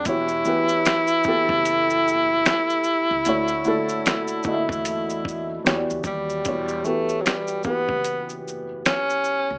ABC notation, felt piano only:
X:1
M:4/4
L:1/8
Q:"Swing 16ths" 1/4=75
K:Edor
V:1 name="Felt piano"
[E,B,FGc] [E,B,FGB] z [E,B,FGA]2 z3 | [D,A,EFc] [D,A,EFA] z [D,A,EF^de]2 z [E,B,FGc=d]2 | [E,B,FGc] [E,B,FGB] z [E,B,FGB]2 z3 |]